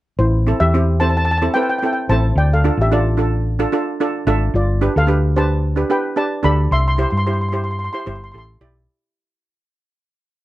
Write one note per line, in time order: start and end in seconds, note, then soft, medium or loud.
0.19 0.52 A1 medium
0.19 0.58 E4 medium
0.19 0.57 C5 medium
0.47 0.63 C4 medium
0.47 0.63 E4 medium
0.47 0.64 A4 medium
0.60 1.47 E2 medium
0.60 0.98 G4 medium
0.60 1.02 E5 loud
0.74 0.90 C4 medium
0.74 0.91 E4 medium
0.74 0.91 G4 medium
1.00 1.25 C4 medium
1.00 1.25 E4 medium
1.00 1.26 A4 medium
1.00 1.08 C5 medium
1.00 1.08 A5 loud
1.10 1.16 A5 medium
1.17 1.24 A5 medium
1.25 1.30 A5 medium
1.31 1.37 A5 medium
1.38 1.50 C4 medium
1.38 1.46 A5 medium
1.42 1.50 E4 medium
1.42 1.50 A4 medium
1.54 1.72 C4 medium
1.54 1.72 E4 medium
1.54 1.72 A4 medium
1.54 1.62 B4 medium
1.54 1.62 G5 loud
1.63 1.68 G5 medium
1.70 1.77 G5 medium
1.79 1.99 C4 medium
1.79 1.84 G5 medium
1.83 1.99 E4 medium
1.83 2.00 A4 medium
1.83 1.92 G5 medium
1.93 2.01 G5 medium
2.09 2.31 A1 medium
2.09 2.37 C4 medium
2.09 2.38 E4 medium
2.09 2.38 A4 medium
2.09 2.35 C5 medium
2.09 2.35 A5 medium
2.36 2.69 D2 loud
2.36 2.50 D5 medium
2.36 2.50 G5 medium
2.53 2.78 A4 medium
2.53 2.80 F5 medium
2.64 2.81 D4 medium
2.64 2.81 F4 medium
2.64 2.81 A4 medium
2.77 3.64 A1 medium
2.77 2.92 G4 medium
2.82 2.92 E5 medium
2.92 3.08 D4 medium
2.92 3.08 F4 medium
2.92 4.24 F4 medium
2.92 3.08 A4 medium
2.92 4.24 D5 medium
3.17 3.42 D4 medium
3.17 3.43 F4 medium
3.17 3.43 A4 medium
3.59 3.67 D4 medium
3.59 3.67 F4 medium
3.59 3.68 A4 medium
3.72 3.89 D4 medium
3.72 3.90 F4 medium
3.72 3.90 A4 medium
4.00 4.17 D4 medium
4.00 4.17 F4 medium
4.00 4.17 A4 medium
4.00 4.26 D5 medium
4.27 4.48 G#1 medium
4.27 4.54 D4 loud
4.27 4.54 F4 medium
4.27 4.55 A4 loud
4.27 4.52 E5 medium
4.54 4.87 G1 loud
4.54 4.93 F4 medium
4.54 4.98 D5 medium
4.81 4.98 D4 medium
4.81 4.98 G4 medium
4.81 4.99 B4 medium
4.96 5.83 D2 medium
4.96 5.34 A4 medium
4.96 5.38 F5 medium
5.07 5.25 D4 medium
5.07 5.25 G4 medium
5.07 5.25 B4 medium
5.36 5.61 D4 medium
5.36 5.61 G4 medium
5.36 5.61 B4 medium
5.36 5.87 C5 medium
5.36 5.93 A5 medium
5.76 5.84 D4 medium
5.76 5.85 G4 medium
5.76 5.85 B4 medium
5.90 6.07 D4 medium
5.90 6.07 G4 medium
5.90 6.07 B4 medium
5.90 6.16 B4 medium
5.90 6.19 G5 medium
6.16 6.33 D4 medium
6.16 6.34 G4 medium
6.16 6.34 B4 medium
6.16 6.43 D5 medium
6.16 6.45 A5 medium
6.43 6.66 D2 medium
6.43 6.71 D4 medium
6.43 6.71 G4 medium
6.43 6.72 A4 medium
6.43 6.70 D5 medium
6.43 6.72 B5 medium
6.71 7.04 C2 medium
6.71 6.80 E5 medium
6.71 6.78 C6 medium
6.80 6.87 C6 medium
6.88 6.94 C6 medium
6.97 7.15 E4 medium
6.97 7.15 G4 medium
6.97 7.16 C5 medium
6.97 7.01 C6 medium
7.03 7.09 C6 medium
7.10 7.88 G2 medium
7.10 7.16 C6 medium
7.17 7.24 C6 medium
7.26 7.43 E4 medium
7.26 7.43 G4 medium
7.26 7.43 C5 medium
7.26 7.32 C6 medium
7.33 7.40 C6 medium
7.41 7.47 C6 medium
7.49 7.77 E4 medium
7.49 7.54 C6 medium
7.53 7.77 G4 medium
7.53 7.78 C5 medium
7.53 7.62 C6 medium
7.64 7.70 C6 medium
7.71 7.77 C6 medium
7.79 7.83 C6 medium
7.84 7.92 C6 medium
7.93 8.02 E4 medium
7.93 8.02 G4 medium
7.93 8.02 C5 medium
7.93 7.99 C6 medium
8.00 8.06 C6 medium
8.06 8.31 G1 medium
8.06 8.24 E4 medium
8.06 8.24 G4 medium
8.06 8.24 C5 medium
8.06 8.14 C6 medium
8.16 8.23 C6 medium
8.24 8.30 C6 medium
8.32 8.59 A1 medium
8.32 8.51 E4 medium
8.32 8.51 G4 medium
8.32 8.51 A4 medium
8.32 8.37 C6 medium
8.38 8.45 C6 medium
8.61 8.85 B1 medium
8.61 8.88 E4 medium
8.61 8.88 G4 medium
8.61 8.88 D5 loud